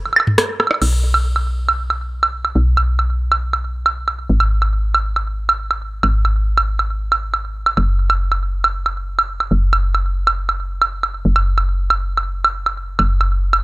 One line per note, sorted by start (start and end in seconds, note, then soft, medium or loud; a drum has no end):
0.06 high woodblock soft
0.13 high woodblock soft
0.16 high woodblock medium
0.20 high woodblock medium
0.27 mid tom medium
0.38 cross-stick loud
0.38 closed hi-hat medium
0.60 cross-stick medium
0.60 high woodblock medium
0.67 cross-stick medium
0.67 high woodblock medium
0.71 high woodblock soft
0.74 high woodblock soft
0.82 2.53 B1 medium
0.82 crash medium
0.82 high woodblock soft
1.14 high woodblock medium
1.36 high woodblock soft
1.69 high woodblock medium
1.90 high woodblock soft
2.23 high woodblock medium
2.45 high woodblock soft
2.55 4.27 B1 medium
2.77 high woodblock medium
2.99 high woodblock soft
3.32 high woodblock medium
3.53 high woodblock soft
3.86 high woodblock medium
4.08 high woodblock soft
4.30 6.01 G#1 medium
4.40 high woodblock medium
4.62 high woodblock soft
4.95 high woodblock medium
5.16 high woodblock soft
5.49 high woodblock medium
5.71 high woodblock soft
6.03 7.75 G#1 medium
6.03 high woodblock medium
6.25 high woodblock soft
6.58 high woodblock medium
6.79 high woodblock soft
7.12 high woodblock medium
7.34 high woodblock soft
7.66 high woodblock medium
7.77 9.49 F#1 medium
7.77 high woodblock soft
8.10 high woodblock medium
8.32 high woodblock soft
8.64 high woodblock medium
8.86 high woodblock soft
9.19 high woodblock medium
9.40 high woodblock soft
9.51 11.23 F#1 medium
9.73 high woodblock medium
9.95 high woodblock soft
10.27 high woodblock medium
10.49 high woodblock soft
10.82 high woodblock medium
11.03 high woodblock soft
11.25 12.97 F#1 medium
11.36 high woodblock medium
11.58 high woodblock soft
11.90 high woodblock medium
12.17 high woodblock soft
12.45 high woodblock medium
12.66 high woodblock soft
12.99 13.63 F#1 medium
12.99 high woodblock medium
13.21 high woodblock soft
13.53 high woodblock medium